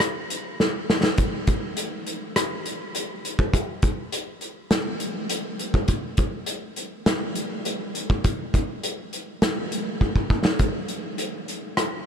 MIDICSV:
0, 0, Header, 1, 2, 480
1, 0, Start_track
1, 0, Tempo, 588235
1, 966, Time_signature, 4, 2, 24, 8
1, 9841, End_track
2, 0, Start_track
2, 0, Title_t, "Drums"
2, 1, Note_on_c, 9, 37, 88
2, 1, Note_on_c, 9, 42, 62
2, 82, Note_off_c, 9, 37, 0
2, 82, Note_off_c, 9, 42, 0
2, 248, Note_on_c, 9, 42, 55
2, 329, Note_off_c, 9, 42, 0
2, 490, Note_on_c, 9, 38, 46
2, 571, Note_off_c, 9, 38, 0
2, 731, Note_on_c, 9, 38, 58
2, 813, Note_off_c, 9, 38, 0
2, 844, Note_on_c, 9, 38, 70
2, 925, Note_off_c, 9, 38, 0
2, 960, Note_on_c, 9, 42, 58
2, 965, Note_on_c, 9, 36, 87
2, 1042, Note_off_c, 9, 42, 0
2, 1047, Note_off_c, 9, 36, 0
2, 1202, Note_on_c, 9, 42, 50
2, 1204, Note_on_c, 9, 36, 67
2, 1283, Note_off_c, 9, 42, 0
2, 1286, Note_off_c, 9, 36, 0
2, 1442, Note_on_c, 9, 42, 72
2, 1524, Note_off_c, 9, 42, 0
2, 1686, Note_on_c, 9, 42, 46
2, 1767, Note_off_c, 9, 42, 0
2, 1926, Note_on_c, 9, 37, 85
2, 1926, Note_on_c, 9, 42, 69
2, 2008, Note_off_c, 9, 37, 0
2, 2008, Note_off_c, 9, 42, 0
2, 2167, Note_on_c, 9, 42, 49
2, 2249, Note_off_c, 9, 42, 0
2, 2405, Note_on_c, 9, 42, 65
2, 2487, Note_off_c, 9, 42, 0
2, 2651, Note_on_c, 9, 42, 44
2, 2733, Note_off_c, 9, 42, 0
2, 2765, Note_on_c, 9, 36, 67
2, 2847, Note_off_c, 9, 36, 0
2, 2885, Note_on_c, 9, 36, 64
2, 2886, Note_on_c, 9, 42, 58
2, 2966, Note_off_c, 9, 36, 0
2, 2967, Note_off_c, 9, 42, 0
2, 3120, Note_on_c, 9, 42, 48
2, 3125, Note_on_c, 9, 36, 70
2, 3202, Note_off_c, 9, 42, 0
2, 3206, Note_off_c, 9, 36, 0
2, 3366, Note_on_c, 9, 42, 68
2, 3447, Note_off_c, 9, 42, 0
2, 3599, Note_on_c, 9, 42, 46
2, 3681, Note_off_c, 9, 42, 0
2, 3841, Note_on_c, 9, 38, 82
2, 3841, Note_on_c, 9, 42, 68
2, 3923, Note_off_c, 9, 38, 0
2, 3923, Note_off_c, 9, 42, 0
2, 4080, Note_on_c, 9, 42, 53
2, 4162, Note_off_c, 9, 42, 0
2, 4321, Note_on_c, 9, 42, 77
2, 4402, Note_off_c, 9, 42, 0
2, 4565, Note_on_c, 9, 42, 46
2, 4646, Note_off_c, 9, 42, 0
2, 4684, Note_on_c, 9, 36, 68
2, 4765, Note_off_c, 9, 36, 0
2, 4797, Note_on_c, 9, 42, 62
2, 4802, Note_on_c, 9, 36, 70
2, 4879, Note_off_c, 9, 42, 0
2, 4884, Note_off_c, 9, 36, 0
2, 5036, Note_on_c, 9, 42, 52
2, 5043, Note_on_c, 9, 36, 70
2, 5117, Note_off_c, 9, 42, 0
2, 5124, Note_off_c, 9, 36, 0
2, 5275, Note_on_c, 9, 42, 75
2, 5356, Note_off_c, 9, 42, 0
2, 5519, Note_on_c, 9, 42, 47
2, 5601, Note_off_c, 9, 42, 0
2, 5763, Note_on_c, 9, 38, 83
2, 5763, Note_on_c, 9, 42, 69
2, 5845, Note_off_c, 9, 38, 0
2, 5845, Note_off_c, 9, 42, 0
2, 6002, Note_on_c, 9, 42, 57
2, 6083, Note_off_c, 9, 42, 0
2, 6244, Note_on_c, 9, 42, 71
2, 6326, Note_off_c, 9, 42, 0
2, 6487, Note_on_c, 9, 42, 51
2, 6569, Note_off_c, 9, 42, 0
2, 6608, Note_on_c, 9, 36, 66
2, 6690, Note_off_c, 9, 36, 0
2, 6726, Note_on_c, 9, 42, 57
2, 6729, Note_on_c, 9, 36, 80
2, 6807, Note_off_c, 9, 42, 0
2, 6811, Note_off_c, 9, 36, 0
2, 6968, Note_on_c, 9, 36, 65
2, 6968, Note_on_c, 9, 42, 49
2, 7050, Note_off_c, 9, 36, 0
2, 7050, Note_off_c, 9, 42, 0
2, 7210, Note_on_c, 9, 42, 71
2, 7291, Note_off_c, 9, 42, 0
2, 7449, Note_on_c, 9, 42, 47
2, 7530, Note_off_c, 9, 42, 0
2, 7687, Note_on_c, 9, 38, 85
2, 7687, Note_on_c, 9, 42, 66
2, 7768, Note_off_c, 9, 38, 0
2, 7768, Note_off_c, 9, 42, 0
2, 7931, Note_on_c, 9, 42, 52
2, 8012, Note_off_c, 9, 42, 0
2, 8168, Note_on_c, 9, 36, 51
2, 8250, Note_off_c, 9, 36, 0
2, 8287, Note_on_c, 9, 36, 45
2, 8368, Note_off_c, 9, 36, 0
2, 8406, Note_on_c, 9, 36, 66
2, 8488, Note_off_c, 9, 36, 0
2, 8526, Note_on_c, 9, 38, 72
2, 8608, Note_off_c, 9, 38, 0
2, 8642, Note_on_c, 9, 42, 54
2, 8646, Note_on_c, 9, 36, 66
2, 8724, Note_off_c, 9, 42, 0
2, 8728, Note_off_c, 9, 36, 0
2, 8881, Note_on_c, 9, 42, 43
2, 8963, Note_off_c, 9, 42, 0
2, 9124, Note_on_c, 9, 42, 61
2, 9206, Note_off_c, 9, 42, 0
2, 9370, Note_on_c, 9, 42, 40
2, 9451, Note_off_c, 9, 42, 0
2, 9605, Note_on_c, 9, 37, 68
2, 9605, Note_on_c, 9, 42, 54
2, 9687, Note_off_c, 9, 37, 0
2, 9687, Note_off_c, 9, 42, 0
2, 9841, End_track
0, 0, End_of_file